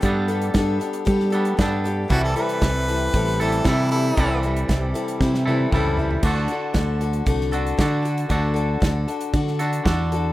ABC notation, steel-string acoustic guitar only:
X:1
M:4/4
L:1/8
Q:1/4=116
K:Dmix
V:1 name="Steel-string acoustic guitar"
[G,B,DGA] [DGA] [B,DGA] [DGA] [G,B,DGA] [DGA] [B,DGA] [DGA] | [C,E,G,CEA] [G,CEA] [G,CEA] [G,CEA] [C,E,G,CEA] [G,CEA] [G,CEA] [G,CEA] | [C,E,G,CEA] [G,CEA] [G,CEA] [G,CEA] [C,E,G,CEA] [G,CEA] [G,CEA] [G,CEA] | [D,A,DFA] [DFA] [A,DFA] [DFA] [D,A,DFA] [DFA] [A,DFA] [DFA] |
[D,A,DFA] [DFA] [A,DFA] [DFA] [D,A,DFA] [DFA] [A,DFA] [DFA] |]